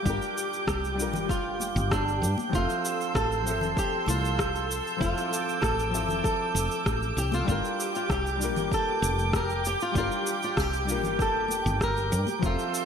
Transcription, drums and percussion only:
0.05 kick, cabasa
0.22 cabasa
0.38 cabasa
0.53 cabasa
0.67 kick, cross-stick, cabasa
0.84 cabasa
1.00 cabasa
1.13 low conga, cabasa
1.29 kick, cross-stick, cabasa
1.60 high conga, cabasa
1.77 cabasa
1.91 kick, cross-stick, cabasa
2.08 cabasa
2.24 cabasa
2.38 high conga, cabasa
2.53 kick, cabasa
2.70 cabasa
2.85 cabasa
3.01 cabasa
3.15 kick, cross-stick, cabasa
3.32 cabasa
3.47 cabasa
3.61 low conga, cabasa
3.77 kick, cabasa
4.06 high conga, cabasa
4.25 cabasa
4.39 kick, cross-stick, cabasa
4.56 cabasa
4.71 cabasa
4.87 cabasa
5.01 kick, cabasa
5.18 cabasa
5.33 cabasa
5.49 cabasa
5.62 kick, cross-stick, cabasa
5.80 cabasa
5.94 cabasa
6.09 low conga, cabasa
6.24 kick, cross-stick, cabasa
6.55 high conga, cabasa
6.72 cabasa
6.86 kick, cross-stick, cabasa
7.02 cabasa
7.18 cabasa
7.32 high conga, cabasa
7.48 kick, cabasa
7.65 cabasa
7.80 cabasa
7.95 cabasa
8.10 kick, cross-stick, cabasa
8.26 cabasa
8.41 cabasa
8.56 low conga, cabasa
8.72 kick, cabasa
9.02 high conga, cabasa
9.19 cabasa
9.33 kick, cross-stick, cabasa
9.50 cabasa
9.65 cabasa
9.80 cabasa
9.95 kick, cabasa
10.12 cabasa
10.27 cabasa
10.42 cabasa
10.57 kick, cross-stick, cabasa
10.74 cabasa
10.89 cabasa
11.04 low conga, cabasa
11.19 kick, cross-stick, cabasa
11.48 high conga, cabasa
11.67 cabasa
11.81 kick, cross-stick, cabasa
11.97 cabasa
12.12 cabasa
12.27 high conga, cabasa
12.42 kick, cabasa
12.59 cabasa
12.74 cabasa

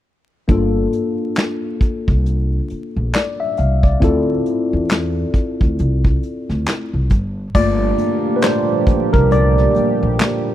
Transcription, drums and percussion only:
0.48 kick, closed hi-hat
0.93 closed hi-hat
1.35 snare, clap, closed hi-hat
1.81 kick, closed hi-hat
2.08 kick
2.26 closed hi-hat
2.70 closed hi-hat
3.13 snare, clap, closed hi-hat
3.57 closed hi-hat
3.83 kick
4.02 kick, closed hi-hat
4.46 closed hi-hat
4.89 snare, clap, closed hi-hat
5.34 kick, closed hi-hat
5.61 kick
5.79 closed hi-hat
6.05 kick
6.23 closed hi-hat
6.50 snare
6.66 snare, clap, closed hi-hat
7.10 kick, closed hi-hat
7.55 kick, crash
7.98 closed hi-hat, high conga
8.41 snare, clap, closed hi-hat, muted conga
8.87 kick, closed hi-hat, muted conga, high conga, low conga
9.14 kick
9.31 closed hi-hat, muted conga, low conga
9.58 snare
9.75 closed hi-hat, muted conga, high conga
10.19 snare, clap, closed hi-hat, muted conga, high conga

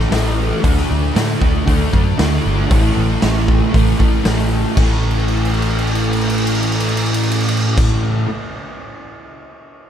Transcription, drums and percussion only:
0.12 snare, open hi-hat
0.64 kick, open hi-hat
0.77 snare
1.16 snare, open hi-hat
1.42 kick
1.68 kick, open hi-hat
1.93 kick
2.19 snare, open hi-hat
2.71 kick, open hi-hat
3.22 snare, open hi-hat
3.48 kick
3.74 kick, open hi-hat
4.00 kick
4.25 snare, open hi-hat
4.77 kick, crash
5.03 crash
5.11 ride
5.20 crash
5.28 ride
5.37 crash
5.45 ride
5.54 crash
5.62 ride
5.70 crash
5.78 ride
5.87 crash
5.95 ride
6.04 crash
6.13 ride
6.21 crash
6.30 ride
6.38 crash
6.47 ride
6.55 crash
6.63 ride
6.72 crash
6.80 ride
6.89 crash
6.97 ride
7.06 crash
7.14 ride
7.23 crash
7.31 ride
7.40 crash
7.48 ride
7.57 crash
7.78 kick, crash

